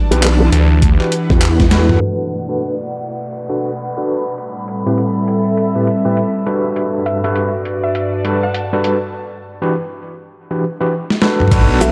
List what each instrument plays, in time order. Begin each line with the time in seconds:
Already playing: ambient pad E3 D4 G4, analog synth pad G3 E4 B4 D5 A5
0.11 wobble bass B1, tine electric piano D4 F#4 G4 B4, closed hi-hat
0.23 clap, closed hi-hat
0.52 detuned saw bass D2, closed hi-hat
0.57 analog synth pad F#5
0.82 kick, closed hi-hat
1.00 tine electric piano D4 F#4 G4 B4, clap
1.12 closed hi-hat
1.30 wobble bass E2, tine electric piano D4 F#4 G4 B4, kick, snare
1.41 clap, closed hi-hat
1.60 kick, snare, closed hi-hat
1.71 tine electric piano D4 F#4 A4 B4, snare, closed hi-hat
1.89 mid tom
2.00 ambient pad B2 A3 D5, downlifter
2.30 closed hi-hat
2.48 tine electric piano D4 F#4 A4 B4
2.60 closed hi-hat
2.87 analog synth pad B5, closed hi-hat
3.19 closed hi-hat
3.49 tine electric piano D4 F#4 A4 B4, closed hi-hat
3.79 closed hi-hat
3.97 tine electric piano D4 F#4 A4 B4
4.08 closed hi-hat
4.38 ambient pad A2 G3 C4, analog synth pad A4, closed hi-hat
4.67 analog synth pad E5, closed hi-hat
4.86 tine electric piano A2 C4 E4 G4 B4, closed hi-hat
4.98 closed hi-hat
5.28 closed hi-hat
5.57 closed hi-hat
5.75 tine electric piano A2 C4 E4 G4 B4
5.87 closed hi-hat
6.05 tine electric piano A2 C4 E4 G4 B4
6.17 closed hi-hat
6.46 tine electric piano G3 D4 F#4 A4 B4, closed hi-hat
6.76 ambient pad G2 F#4 B4, closed hi-hat
7.06 synth pluck E5, closed hi-hat
7.18 analog synth pad D5
7.24 tine electric piano G3 D4 F#4 A4 B4, synth pluck E5, closed hi-hat
7.36 closed hi-hat
7.65 closed hi-hat
7.84 synth pluck E5, analog synth pad A5
7.95 synth pluck E5, closed hi-hat
8.25 tine electric piano G3 D4 F#4 A4 B4, closed hi-hat
8.43 synth pluck F#5
8.54 closed hi-hat
8.73 tine electric piano G3 D4 F#4 A4 B4
8.84 closed hi-hat
9.62 tine electric piano E3 D4 F#4 G4 B4
10.51 tine electric piano E3 D4 F#4 G4 B4
10.81 tine electric piano E3 D4 F#4 G4 B4
11.10 snare
11.22 tine electric piano D4 F#4 A4 B4, snare
11.40 mid tom
11.48 detuned saw bass B1, tine electric piano D4 F#4 A4 B4, closed hi-hat, mid tom
11.52 ambient pad A3 B3 D4, kick, mid tom, crash
11.58 mid tom
11.61 mid tom
11.81 wobble bass B1, synth pluck E5, snare, closed hi-hat, shaker